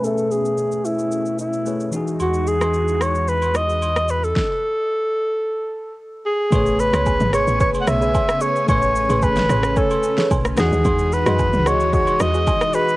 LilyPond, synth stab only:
\new Staff \with { instrumentName = "Synth stab" } { \time 4/4 \key a \major \tempo 4 = 111 r1 | r1 | r1 | r8. <gis' b' cis''>8. <gis' b' cis''>8 <gis' b' cis''>8. <gis' b' cis''>16 r8 <gis' b' cis''>16 r16 |
r8. <gis' b' cis''>8. <gis' b' cis''>8 <b' cis'' gis''>8. <gis' b' cis''>16 r8 <fis' gis' dis''>16 r16 | r8. <fis' gis' dis''>8. <fis' gis' dis''>8 <fis' gis' dis''>8. <fis' gis' dis''>16 r8 <fis' gis' dis''>16 r16 | }